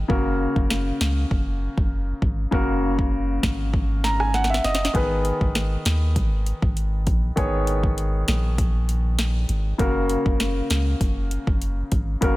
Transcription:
0.08 0.47 F#1 loud
0.08 2.48 C#3 medium
0.08 2.48 A#3 medium
0.08 2.48 F#4 medium
0.08 2.49 A#4 medium
0.08 kick loud
0.56 0.92 F#1 loud
0.56 kick medium
0.70 snare loud
1.01 1.25 C#2 medium
1.01 snare loud
1.31 1.68 F#1 loud
1.31 kick medium
1.78 2.13 F#1 medium
1.78 kick loud
2.22 2.46 G#1 medium
2.22 kick medium
2.51 3.39 F#1 loud
2.51 4.90 C#3 medium
2.51 4.91 A#3 medium
2.51 4.91 F#4 medium
2.51 4.91 A#4 medium
2.51 kick loud
2.99 kick medium
3.43 4.60 G#1 medium
3.43 kick medium
3.43 snare loud
3.74 kick medium
4.04 4.19 A#5 medium
4.04 snare medium
4.20 4.33 G#5 medium
4.20 cross-stick medium
4.34 4.49 F#5 medium
4.34 snare medium
4.44 snare medium
4.50 4.63 E5 medium
4.54 snare medium
4.64 4.89 F#1 medium
4.64 4.93 D#5 medium
4.64 snare medium
4.75 snare medium
4.85 snare medium
4.93 5.32 G#1 loud
4.93 7.33 D#3 medium
4.93 7.33 B3 medium
4.93 7.33 G#4 medium
4.93 7.34 B4 medium
4.93 kick loud
4.93 closed hi-hat medium
5.25 closed hi-hat medium
5.41 5.77 G#1 loud
5.41 kick medium
5.55 snare loud
5.55 closed hi-hat medium
5.85 6.17 D#2 medium
5.85 snare loud
5.85 closed hi-hat soft
6.16 6.53 G#1 loud
6.16 kick medium
6.16 closed hi-hat medium
6.46 closed hi-hat medium
6.62 7.08 G#1 medium
6.62 kick loud
6.77 closed hi-hat medium
7.07 7.31 A#1 medium
7.07 kick medium
7.07 closed hi-hat medium
7.36 8.24 G#1 loud
7.36 9.75 D#3 medium
7.36 9.75 B3 medium
7.36 9.76 G#4 medium
7.36 9.76 C#5 medium
7.36 kick loud
7.36 closed hi-hat medium
7.67 closed hi-hat medium
7.83 kick medium
7.98 closed hi-hat medium
8.28 9.45 A#1 medium
8.28 snare loud
8.28 closed hi-hat soft
8.58 kick medium
8.58 closed hi-hat medium
8.89 closed hi-hat medium
9.19 snare loud
9.19 closed hi-hat medium
9.49 9.73 G#1 loud
9.49 closed hi-hat medium
9.78 10.17 F#1 loud
9.78 12.17 C#3 medium
9.78 12.18 A#3 medium
9.78 12.18 F#4 medium
9.78 12.19 A#4 medium
9.78 kick loud
9.78 closed hi-hat medium
10.09 closed hi-hat medium
10.26 10.62 F#1 loud
10.26 kick medium
10.40 snare loud
10.40 closed hi-hat medium
10.70 10.95 C#2 medium
10.70 snare loud
10.70 closed hi-hat soft
11.01 11.38 F#1 loud
11.01 kick medium
11.01 closed hi-hat medium
11.31 closed hi-hat medium
11.47 11.83 F#1 medium
11.47 kick loud
11.62 closed hi-hat medium
11.92 12.16 G#1 medium
11.92 kick medium
11.92 closed hi-hat medium
12.21 12.37 F#1 loud
12.21 12.37 C#3 medium
12.21 12.37 A#3 medium
12.21 12.37 F#4 medium
12.21 12.37 A#4 medium
12.21 kick loud
12.21 closed hi-hat medium

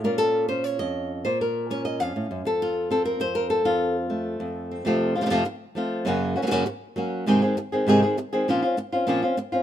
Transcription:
0.00 0.06 F4 soft
0.04 0.80 A#2 medium
0.04 0.48 C#4 medium
0.04 1.88 F4 medium
0.04 0.18 A#4 loud
0.18 0.48 A4 loud
0.48 1.23 C#4 medium
0.48 0.64 C5 loud
0.64 1.09 C#5 loud
0.79 1.25 F2 medium
0.79 1.25 D#5 loud
1.25 2.00 A#2 medium
1.25 1.40 C5 medium
1.41 2.01 A#4 medium
1.70 2.44 C#4 medium
1.70 1.85 C#5 medium
1.85 2.00 D#5 loud
2.00 2.15 F2 medium
2.00 2.45 F5 loud
2.16 2.30 A2 medium
2.31 2.45 F#2 medium
2.45 3.19 F2 medium
2.45 2.90 A4 loud
2.62 3.20 F4 medium
2.91 4.09 C4 medium
2.91 3.05 A4 loud
3.05 3.20 A#4 loud
3.20 3.65 F2 medium
3.20 3.65 C5 loud
3.35 3.50 A#4 loud
3.50 3.95 A4 loud
3.65 4.39 F2 medium
3.65 4.86 F4 medium
4.10 4.84 A3 medium
4.40 4.84 F2 medium
4.71 4.85 C4 medium
4.85 5.15 F2 medium
4.85 5.15 C3 medium
4.85 5.15 F3 medium
4.85 5.16 A3 medium
4.85 5.15 C4 medium
4.85 5.14 F4 medium
5.16 5.20 F3 soft
5.16 5.21 A3 medium
5.16 5.21 C4 medium
5.16 5.21 F4 medium
5.21 5.25 C3 medium
5.21 5.25 F3 medium
5.21 5.25 A3 medium
5.21 5.25 C4 medium
5.21 5.26 F4 medium
5.26 5.29 C3 medium
5.26 5.29 F3 medium
5.26 5.29 A3 medium
5.26 5.30 C4 medium
5.26 5.30 F4 medium
5.30 5.44 F2 medium
5.30 5.44 C3 medium
5.30 5.45 F3 medium
5.30 5.44 A3 medium
5.30 5.45 C4 loud
5.30 5.45 F4 medium
5.45 muted nylon-string guitar stroke medium
5.75 6.05 F3 medium
5.75 6.06 A3 medium
5.75 6.06 C4 medium
5.75 6.06 F4 medium
6.05 6.35 F#2 medium
6.05 6.36 C#3 medium
6.05 6.36 F#3 medium
6.05 6.36 A#3 medium
6.05 6.35 C#4 medium
6.05 6.34 F#4 medium
6.36 6.41 F#3 medium
6.36 6.42 A#3 medium
6.36 6.42 C#4 medium
6.36 6.42 F#4 medium
6.42 6.46 C#3 medium
6.42 6.46 F#3 medium
6.42 6.46 A#3 medium
6.42 6.46 C#4 medium
6.42 6.47 F#4 medium
6.47 6.50 C#3 medium
6.47 6.50 F#3 medium
6.47 6.50 A#3 medium
6.47 6.51 C#4 medium
6.47 6.51 F#4 medium
6.51 6.65 F#2 medium
6.51 6.65 C#3 medium
6.51 6.65 F#3 medium
6.51 6.65 A#3 loud
6.51 6.65 C#4 loud
6.51 6.66 F#4 loud
6.66 muted nylon-string guitar stroke medium
6.96 7.26 F#3 medium
6.96 7.26 A#3 medium
6.96 7.27 C#4 medium
6.96 7.27 F#4 medium
7.26 7.41 G#2 medium
7.26 7.42 C3 medium
7.26 7.42 D#3 medium
7.26 7.42 G#3 medium
7.26 7.42 C4 loud
7.26 7.41 G#4 medium
7.42 7.56 D#3 medium
7.42 7.57 G#3 medium
7.42 7.57 C4 medium
7.42 7.56 G#4 medium
7.57 muted nylon-string guitar stroke medium
7.72 7.87 D#3 soft
7.72 7.87 G#3 medium
7.72 7.87 C4 medium
7.72 7.87 G#4 medium
7.87 8.01 G#2 medium
7.87 8.02 C3 medium
7.87 8.02 D#3 medium
7.87 8.02 G#3 medium
7.87 8.02 C4 loud
7.87 8.01 G#4 loud
8.02 8.17 D#3 soft
8.02 8.17 G#3 soft
8.02 8.17 C4 medium
8.02 8.17 G#4 medium
8.17 muted nylon-string guitar stroke medium
8.33 8.48 D#3 medium
8.33 8.48 G#3 medium
8.33 8.47 C4 medium
8.33 8.47 G#4 medium
8.48 8.62 A#2 medium
8.48 8.62 F3 medium
8.48 8.63 C4 medium
8.48 8.63 C#4 medium
8.48 8.61 F4 medium
8.62 8.77 C4 medium
8.62 8.77 C#4 medium
8.62 8.77 F4 medium
8.77 muted nylon-string guitar stroke medium
8.92 9.07 C4 medium
8.92 9.07 C#4 soft
8.92 9.07 F4 medium
9.07 9.22 A#2 medium
9.07 9.22 F3 medium
9.07 9.23 C4 medium
9.07 9.22 C#4 medium
9.07 9.21 F4 medium
9.22 9.37 C4 medium
9.22 9.36 C#4 medium
9.22 9.37 F4 medium
9.37 muted nylon-string guitar stroke medium
9.52 9.63 C4 medium
9.52 9.63 C#4 soft
9.52 9.63 F4 medium

